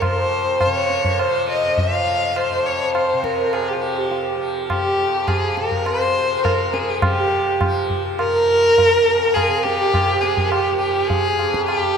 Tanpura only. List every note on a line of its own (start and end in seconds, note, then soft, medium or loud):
0.00 0.66 C3 medium
0.00 1.28 F3 medium
0.04 2.50 F2 medium
0.66 3.13 C3 medium
1.28 1.90 F3 medium
1.90 3.75 F3 soft
2.51 4.96 F2 medium
3.13 5.58 C3 medium
3.75 4.36 F3 medium
4.36 6.19 F3 medium
4.96 8.86 F2 medium
5.58 7.02 C3 soft
6.19 6.80 F3 soft
6.80 7.64 F3 soft
7.02 9.48 C3 medium
7.64 8.24 F3 medium
8.24 10.10 F3 medium
8.86 11.32 F2 medium
9.48 11.94 C3 medium
10.10 10.72 F3 medium
10.72 11.97 F3 medium
11.33 11.97 F2 medium